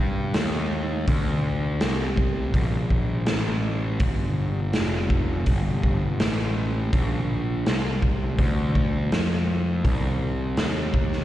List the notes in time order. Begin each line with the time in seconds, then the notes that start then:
Already playing: G2
0.34 D#2, snare, open hi-hat
1.07 D2, kick, open hi-hat
1.81 C2, snare, open hi-hat
2.17 kick
2.54 A#1, kick, open hi-hat
2.90 kick
3.26 A1, snare, open hi-hat
4.00 G1, kick, open hi-hat
4.73 F1, snare, open hi-hat
5.10 kick
5.46 G1, kick, open hi-hat
5.83 kick
6.20 A1, snare, open hi-hat
6.93 A#1, kick, open hi-hat
7.66 C2, snare, open hi-hat
8.02 kick
8.38 D2, kick, open hi-hat
8.75 kick
9.12 F2, snare, open hi-hat
9.85 C2, kick, open hi-hat
10.57 D#2, snare, open hi-hat
10.94 kick
11.13 snare